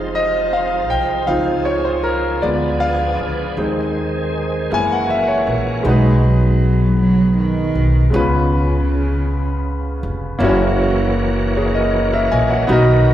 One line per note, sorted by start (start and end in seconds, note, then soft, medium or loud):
0.00 0.90 F1 medium
0.00 1.25 F3 soft
0.00 1.31 G3 soft
0.00 1.30 G#3 soft
0.00 1.25 C4 soft
0.00 1.25 D#4 medium
0.00 1.26 D#4 medium
0.00 1.29 D#4 medium
0.00 1.25 F4 medium
0.00 2.39 F4 soft
0.00 1.30 G#4 medium
0.00 1.31 C5 medium
0.00 2.39 C5 medium
0.15 0.50 D#5 medium
0.53 0.92 F5 medium
0.90 1.25 C2 medium
0.90 1.30 G5 medium
1.27 2.39 C#2 loud
1.27 2.41 C#3 medium
1.27 2.43 C#3 soft
1.27 1.79 F3 medium
1.27 2.41 F3 medium
1.27 1.79 C4 soft
1.27 2.43 C4 soft
1.27 1.80 D#4 medium
1.27 2.42 G#4 medium
1.27 1.67 F5 medium
1.65 1.86 C#5 medium
1.85 2.03 C5 medium
2.03 2.43 A#4 medium
2.42 3.15 D2 loud
2.42 3.57 F3 medium
2.42 3.53 G#3 medium
2.42 3.57 B3 medium
2.42 3.53 B3 medium
2.42 3.57 D4 medium
2.42 3.56 D4 medium
2.42 3.56 F4 medium
2.42 3.54 F4 medium
2.42 3.57 G#4 medium
2.42 3.57 B4 medium
2.42 2.82 D5 medium
2.80 3.53 F5 medium
3.19 3.54 C#2 medium
3.57 4.67 D#2 medium
3.57 4.72 D#3 medium
3.57 4.71 G#3 medium
3.57 4.67 G#3 medium
3.57 4.70 C4 medium
3.57 4.72 C4 medium
3.57 4.68 C4 soft
3.57 4.70 D#4 medium
3.57 4.68 D#4 medium
3.57 3.64 G4 soft
3.57 4.70 C5 medium
3.64 4.75 G#4 medium
4.71 5.43 F#1 medium
4.71 5.85 E3 medium
4.71 5.81 G#3 medium
4.71 5.85 A#3 medium
4.71 5.82 A#3 soft
4.71 5.85 C#4 medium
4.71 5.84 C#4 medium
4.71 5.84 E4 medium
4.71 5.82 E4 medium
4.71 5.85 F#4 medium
4.71 5.84 F#4 medium
4.71 5.84 A#4 medium
4.71 4.92 G#5 loud
4.92 5.11 F#5 medium
5.10 5.29 E5 medium
5.28 5.64 C#5 medium
5.47 5.82 A#1 medium
5.83 7.71 B1 loud
5.83 6.96 B2 medium
5.83 8.08 G#3 medium
5.83 6.25 G#3 loud
5.83 8.09 B3 medium
5.83 8.10 D#4 medium
5.87 8.10 F#4 medium
5.87 8.11 B4 medium
6.23 6.99 F#3 loud
7.00 7.35 F#3 loud
7.37 8.14 D#3 loud
7.75 8.10 B1 medium
8.10 10.00 C#2 loud
8.10 10.03 C#3 medium
8.10 9.23 C#3 medium
8.10 10.36 G#3 medium
8.10 10.37 B3 medium
8.10 10.37 C#4 medium
8.15 10.38 F4 medium
8.15 10.39 B4 medium
10.03 10.38 F1 medium
10.39 12.27 F#1 loud
10.39 12.65 E3 medium
10.39 12.65 F#3 medium
10.39 12.64 A#3 medium
10.39 12.65 A#3 medium
10.39 12.65 C#4 medium
10.39 12.66 E4 medium
10.39 12.66 F#4 medium
10.43 12.67 F#4 medium
10.43 11.55 C#5 medium
11.56 11.74 G#4 medium
11.56 11.74 C#5 medium
11.74 12.11 A#4 soft
11.74 12.11 D#5 medium
12.13 12.31 A#4 medium
12.13 12.31 E5 medium
12.32 12.67 A#1 loud
12.32 12.50 D#5 medium
12.32 12.50 G#5 medium
12.50 12.87 C#5 medium
12.50 12.87 F#5 medium
12.67 13.14 B1 loud
12.67 13.14 B2 medium
12.67 13.14 F#3 medium
12.67 13.14 B3 medium
12.67 13.14 D#4 medium
12.67 13.14 F#4 medium
12.67 13.14 A#4 medium
12.71 13.14 D#3 medium
12.71 13.14 A#4 medium
12.71 13.14 D#5 medium